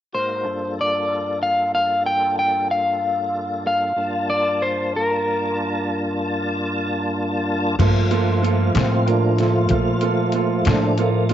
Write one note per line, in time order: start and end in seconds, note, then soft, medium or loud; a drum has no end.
0.13 0.46 G#2 soft
0.13 0.44 A#3 soft
0.13 0.46 D#4 soft
0.13 0.45 F#4 soft
0.13 0.46 A#4 soft
0.13 0.74 C5 medium
0.44 3.93 G2 soft
0.44 3.93 A#3 soft
0.44 3.93 D4 medium
0.44 3.93 F4 soft
0.44 3.93 A4 soft
0.81 1.42 D5 medium
1.43 1.74 F5 medium
1.75 2.06 F5 medium
2.06 2.38 G5 medium
2.39 2.71 G5 medium
2.71 3.66 F5 medium
3.67 4.26 F5 medium
3.96 7.76 G2 medium
3.96 7.76 A#3 medium
3.96 7.76 D4 medium
3.96 7.76 F4 soft
3.96 7.76 A5 medium
4.30 4.62 D5 medium
4.62 4.94 C5 medium
4.96 7.46 A#4 medium
7.79 8.72 G2 medium
7.79 11.34 F3 soft
7.79 11.34 A3 soft
7.79 8.03 A#3 medium
7.79 8.04 F4 medium
7.79 9.41 F4 medium
7.79 8.04 A4 medium
7.79 kick medium
7.79 closed hi-hat medium
7.79 crash medium
8.11 8.35 A#3 medium
8.11 8.35 F4 medium
8.11 8.35 A4 medium
8.11 closed hi-hat soft
8.42 8.67 A#3 medium
8.42 8.67 F4 soft
8.42 8.67 A4 medium
8.42 closed hi-hat medium
8.75 9.68 A2 medium
8.75 8.99 A#3 soft
8.75 8.99 F4 soft
8.75 8.99 A4 medium
8.75 snare loud
8.75 closed hi-hat medium
8.79 9.08 C4 medium
9.06 9.31 A#3 soft
9.06 9.31 F4 soft
9.06 9.31 A#4 soft
9.06 closed hi-hat soft
9.11 9.40 D4 medium
9.36 9.63 A#3 soft
9.36 9.40 E4 medium
9.36 closed hi-hat medium
9.40 9.64 F4 soft
9.40 10.34 F4 medium
9.40 9.64 A4 soft
9.40 snare soft
9.69 10.64 A#2 medium
9.69 9.95 A#3 soft
9.69 9.96 F4 soft
9.69 9.96 A4 soft
9.69 kick medium
9.69 closed hi-hat medium
10.01 10.27 A#3 soft
10.01 10.27 F4 soft
10.01 10.27 A4 medium
10.01 closed hi-hat medium
10.32 10.58 A#3 medium
10.32 10.66 F4 medium
10.32 10.59 F4 soft
10.32 10.59 A4 medium
10.32 closed hi-hat medium
10.65 11.34 A2 medium
10.65 10.90 A#3 medium
10.65 10.98 D4 medium
10.65 10.91 F4 medium
10.65 10.91 A4 medium
10.65 snare medium
10.65 closed hi-hat medium
10.98 11.23 A#3 medium
10.98 11.31 A#3 medium
10.98 11.23 F4 soft
10.98 11.23 A4 medium
10.98 closed hi-hat medium
11.29 11.34 A#3 medium
11.29 11.34 F4 soft
11.29 closed hi-hat soft